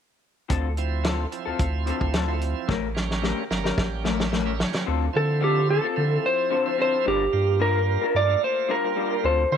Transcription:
0.49 sub bass D2, clean electric guitar D3 C4 F4 A4, kick, closed hi-hat
0.77 tonewheel organ F3 C4 E4, closed hi-hat
1.04 clean electric guitar D3 C4 F4 A4, snare, closed hi-hat
1.32 tonewheel organ F3 C4 E4, closed hi-hat
1.46 sub bass D2, clean electric guitar C4 F4 A4
1.59 sub bass D2, kick, closed hi-hat
1.86 clean electric guitar D3 C4 F4 A4, closed hi-hat
2.01 sub bass D2, kick
2.13 clean electric guitar D3 C4 F4 A4, snare, closed hi-hat
2.28 tonewheel organ F3 C4 E4
2.41 closed hi-hat
2.68 sub bass A1, clean electric guitar A3 C#4 G4 A#4, kick, snare
2.95 tonewheel organ G3 A#3 C#4, snare
3.11 snare
3.22 clean electric guitar A3 C#4 G4 A#4, snare
3.50 sub bass G1, tonewheel organ G3 A#3 C#4 A#5, snare
3.64 clean electric guitar C#4 G4 A#4, snare
3.77 sub bass A1, tonewheel organ G5, kick, snare
4.04 clean electric guitar A3 C#4 G4 A#4, tonewheel organ E5, snare
4.20 snare
4.32 clean electric guitar A3 C#4 G4 A#4, tonewheel organ E5, snare
4.46 tonewheel organ G3 A#3 C#4
4.59 tonewheel organ C#5, snare
4.75 snare
4.86 sub bass D2, clean electric guitar D3 C4 F4 A4
5.13 sub bass D3, tonewheel organ F3 C4 E4, lead electric guitar A4
5.41 clean electric guitar D3 C4 F4 A4, lead electric guitar G4
5.70 lead electric guitar A4
5.82 clean electric guitar C4 F4 A4
5.96 sub bass D3, tonewheel organ F3 C4 E4
6.26 lead electric guitar C5
6.50 clean electric guitar D3 C4 F4 A4
6.65 tonewheel organ F3 C4 E4
6.77 clean electric guitar D3 C4 F4 A4
6.82 lead electric guitar C5
7.05 sub bass G1, clean electric guitar G3 D4 F4 A#4, lead electric guitar G4
7.33 sub bass G2, tonewheel organ G3 A#3 F4
7.60 clean electric guitar G3 D4 F4 A#4, lead electric guitar A#4
8.01 clean electric guitar D4 F4 A#4
8.14 sub bass G2, tonewheel organ A3 A#3 F4, lead electric guitar D5
8.44 lead electric guitar C5
8.69 clean electric guitar G3 D4 F4 A#4, lead electric guitar A#4
8.84 tonewheel organ G3 A#3 F4
8.96 clean electric guitar G3 D4 F4 A#4
9.24 sub bass D2, clean electric guitar D3 C4 F4 A4, lead electric guitar C5
9.52 sub bass D3, tonewheel organ C4 E4 F4, lead electric guitar D5

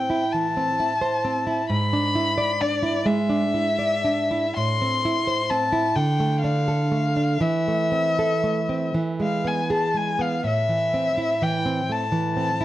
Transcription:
Already playing: nylon-string guitar A2 C4, violin G5
0.10 nylon-string guitar E4
0.32 nylon-string guitar E3, violin A5
0.57 nylon-string guitar C4
0.80 nylon-string guitar E4
1.01 nylon-string guitar C5
1.25 nylon-string guitar C4
1.47 nylon-string guitar E4
1.70 nylon-string guitar G#2, violin B5
1.93 nylon-string guitar D4
2.15 nylon-string guitar E4
2.38 nylon-string guitar D5
2.61 nylon-string guitar D4, violin D5
2.83 nylon-string guitar E4
3.06 nylon-string guitar G#3, violin E5
3.30 nylon-string guitar D4
3.54 nylon-string guitar E4
3.79 nylon-string guitar D5
4.04 nylon-string guitar D4
4.31 nylon-string guitar E4
4.57 nylon-string guitar A2, violin C6
4.82 nylon-string guitar C4
5.05 nylon-string guitar E4
5.27 nylon-string guitar C5
5.50 nylon-string guitar C4, violin A5
5.72 nylon-string guitar E4
5.96 nylon-string guitar D3, violin G5
6.20 nylon-string guitar A3
6.42 nylon-string guitar D4, violin F5
6.68 nylon-string guitar A4
6.92 nylon-string guitar A3
7.17 nylon-string guitar D4
7.41 nylon-string guitar E3, violin E5
7.68 nylon-string guitar A3
7.92 nylon-string guitar C4
8.19 nylon-string guitar A4
8.44 nylon-string guitar A3
8.69 nylon-string guitar C4
8.94 nylon-string guitar E3
9.20 nylon-string guitar G#3, violin F5
9.45 nylon-string guitar B3, violin G#5
9.70 nylon-string guitar G#4, violin A5
9.94 nylon-string guitar G#3, violin G#5
10.19 nylon-string guitar B3, violin F5
10.44 nylon-string guitar A2, violin E5
10.69 nylon-string guitar E3
10.94 nylon-string guitar C4
11.18 nylon-string guitar E4
11.42 nylon-string guitar E3, violin G5
11.66 nylon-string guitar C4
11.90 nylon-string guitar A3, violin A5
12.12 nylon-string guitar E3
12.37 nylon-string guitar C4
12.61 nylon-string guitar E4

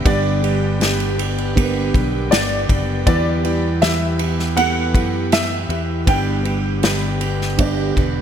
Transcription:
Already playing: analog synth pad D3 B3 G4, felt piano B3 D4 G4 D5
0.05 fingered electric bass G1, felt piano G2 B3 D4 G4 B4, steel-string acoustic guitar G3 D4 G4 B4, grand piano D5, kick, ride
0.43 steel-string acoustic guitar G3 D4 G4 B4, ride
0.80 steel-string acoustic guitar G3 D4 G4 B4, snare, ride
1.00 ride
1.18 steel-string acoustic guitar D4 G4 B4, ride
1.38 ride
1.56 steel-string acoustic guitar G3 D4 G4 B4, felt piano B3 D4 G4 A#4, kick, ride
1.64 felt piano B4
1.94 fingered electric bass B1, steel-string acoustic guitar D4 G4 B4, kick, ride
2.31 fingered electric bass G1, grand piano D5, snare, ride
2.69 fingered electric bass F#1, steel-string acoustic guitar D4 G4 B4, kick, ride
3.06 fingered electric bass E2, analog synth pad E3, steel-string acoustic guitar E3 G3 E4 G4 B4, felt piano E3 B3 E4 G4 B4, grand piano D5, kick, ride
3.44 steel-string acoustic guitar E3 G3 E4 G4 B4, ride
3.82 steel-string acoustic guitar E3 G3 E4 G4 B4, grand piano E5, snare, ride
4.19 steel-string acoustic guitar E4 G4 B4, ride
4.39 snare
4.56 steel-string acoustic guitar G3 E4 G4 B4, felt piano B3 E4 G4 A4, grand piano F#5, ride
4.94 fingered electric bass F#2, steel-string acoustic guitar E4 G4 B4, kick, ride
5.32 grand piano E5, snare, ride
5.69 fingered electric bass E2, steel-string acoustic guitar E4 G4 B4, ride
6.06 fingered electric bass G1, felt piano G2 B3 D4 G4 B4, analog synth pad D3 G4, steel-string acoustic guitar G3 D4 G4 B4, grand piano G5, kick, ride
6.45 steel-string acoustic guitar G3 D4 G4 B4, ride
6.82 steel-string acoustic guitar G3 D4 G4 B4, snare, ride
7.20 steel-string acoustic guitar D4 G4 B4, ride
7.41 snare
7.57 steel-string acoustic guitar G3 D4 G4 B4, felt piano B3 D4 G4 D5, kick, ride
7.96 fingered electric bass E1, steel-string acoustic guitar D4 G4 B4, kick, ride

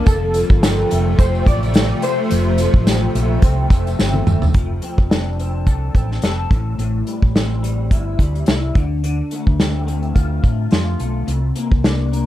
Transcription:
Already playing: clean electric guitar F3 A#3 D4
0.06 fingered electric bass F1, ambient pad C3 F3 A3 F4 A4, synth keys A4, kick, closed hi-hat, tambourine
0.34 clean electric guitar F3, closed hi-hat, tambourine
0.50 fingered electric bass G1, kick
0.63 clean electric guitar C4, snare, closed hi-hat, tambourine
0.91 fingered electric bass F1, clean electric guitar A3, closed hi-hat, tambourine
1.19 fingered electric bass F1, clean electric guitar C4, synth keys C5, kick, closed hi-hat, tambourine
1.35 tambourine
1.46 fingered electric bass A1, clean electric guitar A3, synth keys D5, kick, closed hi-hat, tambourine
1.63 closed hi-hat, tambourine
1.74 clean electric guitar C4, snare, closed hi-hat, tambourine
2.02 clean electric guitar A3, synth keys C5, closed hi-hat, tambourine
2.30 fingered electric bass F1, clean electric guitar F2, closed hi-hat, tambourine
2.58 clean electric guitar F3, closed hi-hat, tambourine
2.74 fingered electric bass A1, kick
2.87 clean electric guitar C4, snare, closed hi-hat, tambourine
3.15 fingered electric bass A#1, clean electric guitar A3, closed hi-hat, tambourine
3.42 fingered electric bass C2, clean electric guitar C4, kick, closed hi-hat, tambourine
3.70 fingered electric bass F1, clean electric guitar A3, kick, closed hi-hat, tambourine
3.87 closed hi-hat, tambourine
3.99 fingered electric bass G1, clean electric guitar C4, snare, tambourine
4.14 high tom
4.27 fingered electric bass E1, clean electric guitar A3, mid tom, tambourine
4.42 floor tom, tambourine
4.54 fingered electric bass F1, clean electric guitar F3, kick, closed hi-hat
4.82 clean electric guitar C4, closed hi-hat
4.98 fingered electric bass F1, kick
5.10 clean electric guitar D4, snare, closed hi-hat
5.39 clean electric guitar C4, closed hi-hat
5.67 fingered electric bass C2, clean electric guitar A4, kick, closed hi-hat
5.95 fingered electric bass A1, clean electric guitar C4, kick, closed hi-hat
6.12 snare
6.22 fingered electric bass F1, clean electric guitar A4, snare, closed hi-hat
6.51 fingered electric bass A1, clean electric guitar A2, kick, closed hi-hat
6.78 fingered electric bass A1, clean electric guitar A2, closed hi-hat
7.07 clean electric guitar G3, closed hi-hat
7.22 fingered electric bass A1, kick
7.35 clean electric guitar C4, snare, closed hi-hat
7.63 clean electric guitar G3, closed hi-hat
7.91 fingered electric bass G1, clean electric guitar E4, kick, closed hi-hat
8.19 fingered electric bass D2, clean electric guitar G3, kick, closed hi-hat
8.35 closed hi-hat
8.46 fingered electric bass C2, clean electric guitar E4, snare, closed hi-hat
8.75 fingered electric bass D2, clean electric guitar D3, kick, closed hi-hat
9.04 clean electric guitar D3, closed hi-hat
9.31 clean electric guitar A3, closed hi-hat
9.47 fingered electric bass D2, kick
9.60 clean electric guitar C4, snare, closed hi-hat
9.87 clean electric guitar A3, closed hi-hat
10.03 closed hi-hat
10.15 fingered electric bass D2, clean electric guitar F4, kick, closed hi-hat
10.43 fingered electric bass A2, clean electric guitar A3, kick, closed hi-hat
10.71 fingered electric bass F2, clean electric guitar F4, snare, closed hi-hat
11.00 fingered electric bass B1, clean electric guitar A3, closed hi-hat
11.27 fingered electric bass C2, clean electric guitar C3, closed hi-hat
11.55 clean electric guitar A#3, closed hi-hat
11.72 fingered electric bass C2, kick
11.84 clean electric guitar D4, snare, closed hi-hat
12.12 clean electric guitar A#3, closed hi-hat

